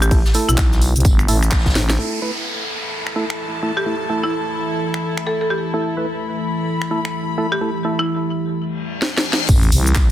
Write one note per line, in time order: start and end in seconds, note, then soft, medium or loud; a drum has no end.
0.00 0.23 A1 loud
0.00 0.18 G4 medium
0.00 closed hi-hat medium
0.00 cabasa medium
0.11 0.20 A3 medium
0.11 0.20 E4 medium
0.11 0.20 A4 medium
0.11 kick loud
0.11 closed hi-hat medium
0.11 open hi-hat medium
0.11 cabasa medium
0.25 snare medium
0.25 cabasa soft
0.34 0.49 A3 medium
0.34 0.49 E4 medium
0.34 0.49 A4 loud
0.34 open hi-hat medium
0.34 tambourine medium
0.49 0.93 B1 loud
0.49 0.81 E4 medium
0.49 closed hi-hat medium
0.49 cabasa medium
0.58 kick loud
0.58 snare loud
0.58 clap loud
0.58 closed hi-hat medium
0.58 tambourine medium
0.58 cabasa medium
0.71 snare soft
0.71 cabasa soft
0.81 open hi-hat medium
0.81 tambourine medium
0.96 1.03 C2 loud
0.96 closed hi-hat soft
0.96 cabasa medium
1.00 closed hi-hat medium
1.05 1.27 G1 loud
1.05 kick loud
1.05 closed hi-hat medium
1.05 tambourine medium
1.05 cabasa medium
1.19 finger snap medium
1.19 cabasa soft
1.28 1.74 A1 loud
1.28 1.37 A3 medium
1.28 1.37 E4 medium
1.28 1.37 A4 loud
1.28 open hi-hat loud
1.28 tambourine medium
1.43 finger snap medium
1.43 closed hi-hat medium
1.43 closed hi-hat soft
1.43 cabasa medium
1.51 kick loud
1.51 snare medium
1.51 clap loud
1.51 closed hi-hat medium
1.51 tambourine medium
1.51 cabasa medium
1.59 snare medium
1.59 tambourine medium
1.66 kick medium
1.66 snare medium
1.66 tambourine medium
1.66 cabasa soft
1.70 snare medium
1.70 tambourine medium
1.75 1.97 A1 loud
1.75 snare medium
1.75 open hi-hat medium
1.75 tambourine medium
1.90 snare medium
1.90 closed hi-hat medium
1.90 cabasa medium
1.99 9.45 E3 medium
1.99 9.45 A3 medium
1.99 2.20 A3 medium
1.99 2.20 E4 medium
1.99 8.55 E4 medium
1.99 5.70 A4 medium
1.99 2.20 A4 medium
1.99 9.45 E5 medium
1.99 downlifter medium
2.22 2.31 A3 medium
2.22 2.31 E4 medium
2.22 2.31 B4 medium
2.26 8.55 A4 medium
2.69 6.12 A5 medium
3.07 finger snap medium
3.16 3.25 A3 medium
3.16 3.25 E4 medium
3.16 3.25 A4 medium
3.30 finger snap medium
3.63 3.72 A3 medium
3.63 3.72 E4 medium
3.63 3.72 A4 medium
3.77 3.93 G4 medium
3.86 3.95 A3 medium
3.86 3.95 E4 medium
3.86 3.95 A4 medium
4.10 4.24 A3 medium
4.10 4.24 E4 medium
4.10 4.24 A4 medium
4.23 4.56 E4 medium
4.94 finger snap medium
5.17 finger snap medium
5.27 5.36 A4 medium
5.41 5.47 A4 medium
5.50 5.88 G4 medium
5.74 5.95 A3 medium
5.74 5.95 E4 medium
5.74 9.45 G4 medium
5.74 5.95 A4 medium
5.96 6.06 A3 medium
5.96 6.06 E4 medium
5.96 6.06 B4 medium
5.96 8.55 B5 medium
6.82 finger snap medium
6.91 7.00 A3 medium
6.91 7.00 E4 medium
6.91 7.00 A4 loud
7.05 finger snap medium
7.38 7.47 A3 medium
7.38 7.47 E4 medium
7.38 7.47 A4 medium
7.52 7.68 G4 medium
7.61 7.70 A3 medium
7.61 7.70 E4 medium
7.61 7.70 A4 medium
7.85 7.99 A3 medium
7.85 7.99 E4 medium
7.85 7.99 A4 medium
7.99 8.32 E4 medium
8.55 reverse cymbal medium
9.02 snare medium
9.18 snare medium
9.33 snare medium
9.49 9.71 A1 loud
9.49 10.12 E3 medium
9.49 10.12 A3 medium
9.49 10.12 A4 medium
9.49 10.12 E5 medium
9.49 kick loud
9.49 closed hi-hat medium
9.49 crash loud
9.49 tambourine medium
9.49 sub drop medium
9.49 cabasa medium
9.63 closed hi-hat medium
9.63 cabasa soft
9.72 10.08 C2 loud
9.72 open hi-hat loud
9.72 tambourine medium
9.86 closed hi-hat soft
9.86 cabasa medium
9.95 kick loud
9.95 snare loud
9.95 clap loud
9.95 closed hi-hat medium
9.95 tambourine medium
9.95 cabasa medium